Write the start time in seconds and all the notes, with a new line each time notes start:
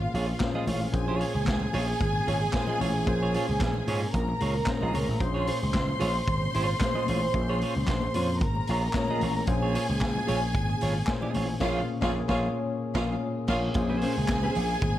Already playing: A#2 A#3 C#4 F4 G#4 A#4 C5 F5
0.01 muted clean electric guitar stroke, muted conga
0.14 A#1 F4 G#4 C#5, open hi-hat
0.28 muted clean electric guitar stroke
0.39 A#2 A#3 C#4 G#4 C5, muted clean electric guitar stroke, kick, snare, clap, closed hi-hat, muted conga, high conga
0.54 F4 G#4 D#5, low conga
0.67 A1 F4 G#4 C#5, open hi-hat, high conga
0.81 muted clean electric guitar stroke
0.92 A#1 A#2 A#3 C#4 G#4 C5 G#5, muted clean electric guitar stroke, kick, closed hi-hat, muted conga
1.08 F4 G#4 C#5, muted conga
1.19 F4 G#4 C#5, open hi-hat
1.35 C#2, muted clean electric guitar stroke
1.45 C#2, muted clean electric guitar stroke, kick, snare, clap, closed hi-hat, muted conga, high conga
1.60 muted clean electric guitar stroke, muted conga, low conga
1.73 A#1 F4 G#4 C#5, open hi-hat, low conga
1.87 muted clean electric guitar stroke
2.00 G#1, kick, closed hi-hat, muted conga
2.15 muted clean electric guitar stroke
2.27 G#1 F4 G#4 C#5, open hi-hat
2.52 A#2 A#3 C#4 G#4 C5, muted clean electric guitar stroke, kick, snare, clap, closed hi-hat, muted conga, high conga
2.67 F4 G#4 D#5, muted conga, low conga
2.80 A1 F4 G#4 C#5, open hi-hat, high conga
2.95 muted clean electric guitar stroke
3.07 A#1 A#2 A#3 C#4 G#4 C5, muted clean electric guitar stroke, kick, closed hi-hat, muted conga
3.23 F4 G#4 C#5
3.34 F4 G#4 C#5, open hi-hat
3.48 C#2, muted clean electric guitar stroke
3.60 A#1, muted clean electric guitar stroke, kick, snare, clap, closed hi-hat, high conga
3.74 muted clean electric guitar stroke, low conga
3.87 G#2 F4 G#4 C#5, open hi-hat, low conga
4.01 muted clean electric guitar stroke
4.14 A#1 A#4 A#5, kick, closed hi-hat, muted conga
4.28 muted clean electric guitar stroke, muted conga
4.40 C#2 F4 G#4 C#5, open hi-hat
4.55 muted clean electric guitar stroke
4.66 A#2 A#3 C#4 G#4 C5, muted clean electric guitar stroke, kick, snare, clap, closed hi-hat, muted conga, high conga
4.81 A#1 F4 G#4 D#5, low conga
4.94 C#2 F4 G#4 C#5, open hi-hat, high conga
5.08 A1, muted clean electric guitar stroke
5.20 A#1 A#2 A#3 C#4 G#4 C5 C6, muted clean electric guitar stroke, kick, closed hi-hat
5.34 F4 G#4 C#5
5.47 F4 G#4 C#5, open hi-hat
5.62 C#2, muted clean electric guitar stroke
5.73 C#2, muted clean electric guitar stroke, kick, snare, clap, closed hi-hat, muted conga, high conga
5.87 muted clean electric guitar stroke, muted conga, low conga
6.00 A#1 F4 G#4 C#5, open hi-hat, low conga
6.15 muted clean electric guitar stroke
6.27 G#1, kick, closed hi-hat
6.41 muted clean electric guitar stroke, muted conga
6.54 G#1 F4 G#4 C#5, open hi-hat
6.68 muted clean electric guitar stroke
6.79 A#2 A#3 C#4 G#4 C5, muted clean electric guitar stroke, kick, snare, clap, closed hi-hat, muted conga, high conga
6.94 F4 G#4 D#5, muted conga, low conga
7.07 A1 F4 G#4 C#5, open hi-hat, high conga
7.22 muted clean electric guitar stroke
7.33 A#1 A#2 A#3 C#4 G#4 B4, muted clean electric guitar stroke, kick, muted conga
7.42 C5
7.49 F4 G#4 C#5
7.61 F4 G#4 C#5, open hi-hat
7.76 C#2, muted clean electric guitar stroke
7.87 A#1, muted clean electric guitar stroke, kick, snare, clap, closed hi-hat, muted conga, high conga
8.02 muted clean electric guitar stroke, muted conga, low conga
8.14 F2 F4 G#4 C#5, open hi-hat, low conga
8.29 muted clean electric guitar stroke
8.41 G#1 A#4 A#5, kick, closed hi-hat
8.55 muted clean electric guitar stroke, muted conga
8.67 A#1 F4 G#4 C#5, open hi-hat
8.83 muted clean electric guitar stroke
8.93 A#2 A#3 C#4 G#4 C#5, muted clean electric guitar stroke, kick, snare, clap, closed hi-hat, muted conga, high conga
9.08 F4 G#4 D#5, muted conga, low conga
9.20 A1 F4 G#4 C#5, open hi-hat, high conga
9.37 muted clean electric guitar stroke
9.47 A#1 A#2 A#3 C#4 G#4 C5 G#5, muted clean electric guitar stroke, kick, closed hi-hat
9.62 F4 G#4 C#5, muted conga
9.74 F4 G#4 C#5, open hi-hat
9.89 C#2, muted clean electric guitar stroke
10.00 C#2, muted clean electric guitar stroke, kick, snare, clap, closed hi-hat, high conga
10.15 muted clean electric guitar stroke, low conga
10.27 A#1 F4 G#4 C#5, open hi-hat, low conga
10.54 G#1, kick, closed hi-hat
10.69 muted clean electric guitar stroke, muted conga
10.81 G#1 F4 G#4 C#5, open hi-hat
10.95 muted clean electric guitar stroke
11.07 A#2 A#3 C#4 G#4 C5, muted clean electric guitar stroke, kick, snare, clap, high conga
11.22 F4 G#4 D#5, muted conga, low conga
11.34 A1 F4 G#4 C#5, open hi-hat, high conga
11.49 muted clean electric guitar stroke
11.60 A#1 A#2 A#3 C#4 F4 G#4 C#5 F5, kick, snare, crash
12.01 A#1 A#2 A#3 C#4 F4 G#4 C#5 F5, kick, snare
12.27 A#1 A#2 A#3 C#4 F4 G#4 C#5 F5, kick, snare
12.94 A#1 A#2 A#3 C#4 F4 G#4 C#5 F5, kick, snare
13.48 A#1 A#2 A#3 C#4 F4 G#4 C#5 F5, kick, snare, crash
13.74 A#1 A#2 A#3 C#4 G#4 C5 G#5, muted clean electric guitar stroke, kick, closed hi-hat, muted conga
13.89 C#4 G#4 C5, muted conga
14.01 A#2 A#3 C#4 G#4 C5, open hi-hat
14.17 C#2
14.28 C#2, muted clean electric guitar stroke, kick, snare, clap, closed hi-hat, muted conga, high conga
14.43 C#4 G#4 C5, muted conga, low conga
14.55 A#1, muted clean electric guitar stroke, open hi-hat, low conga
14.70 muted clean electric guitar stroke
14.82 G#1, muted clean electric guitar stroke, kick, closed hi-hat, high conga